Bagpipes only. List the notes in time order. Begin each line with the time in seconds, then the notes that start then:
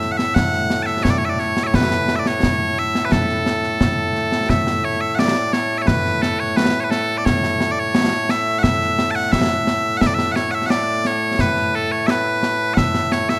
Already playing: A2 A3 E5
0.12 F#5
0.17 E5
0.35 F#5
0.83 E5 A5
1.03 C#5
1.10 D5
1.18 C#5
1.25 E5
1.29 D5
1.39 C#5
1.63 C#5 E5
1.75 B4
2.16 D5 E5
2.27 C#5
2.79 E5
3.05 B4
3.12 A4
4.50 E5
4.84 C#5
5.01 E5
5.15 D5 F#5
5.53 C#5
5.78 C#5 E5
5.87 B4
6.22 A4
6.40 C#5
6.56 B4
6.80 B4 C#5
6.91 A4
7.18 D5
7.25 C#5
7.71 D5
7.79 C#5
8.30 E5
8.59 F#5
8.63 E5
9.11 A5
9.15 F#5
9.32 E5
9.97 E5 F#5
10.07 D5
10.14 E5
10.32 C#5 F#5
10.51 E5 F#5
10.66 D5 F#5
11.07 C#5
11.41 B4
11.75 A4
11.92 C#5
12.07 B4 E5
12.74 E5 F#5
13.12 C#5
13.29 E5